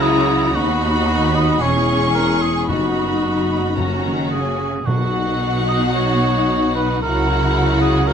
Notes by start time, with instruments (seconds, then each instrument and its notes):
Already playing: double bass section C#2, cello section C#3, french horn section F#3 E4, viola section E4, violin section F#4 A#5
0.02 cor anglais G#4
0.55 double bass section D#2, cello section D#2, french horn section B3 D#4, viola section D#4, cor anglais F#4, violin section F#4 B5
1.35 cor anglais D#5
1.62 double bass section E1, cello section E2, french horn section G#3 E4, viola section C#4, violin section G#4 C#6, cor anglais C#5
2.15 cor anglais A#4
2.42 cor anglais G#4
2.69 double bass section F#1, timpani F#2, cello section F#2, french horn section B3 D#4, viola section D#4, violin section F#4 B5, cor anglais F#4
3.24 cello section F#2
3.77 timpani F#2, french horn section A#3 C#4, viola section C#4, violin section F#4 A#5
4.04 cello section D#3
4.31 cello section C#3, cor anglais G#4, violin section G#5
4.86 double bass section B1, cello section B2, timpani B2, french horn section F#3 D#4, viola section D#4, cor anglais F#4, violin section F#4 F#5
5.69 cor anglais D#5
5.95 cor anglais C#5
6.76 cor anglais B4
7.02 double bass section C#2, cello section C#3, french horn section E4, viola section E4, violin section F#4 F#5, cor anglais A#4
7.81 cor anglais G#4
8.07 viola section E4, violin section F#4 F#5, cor anglais A#4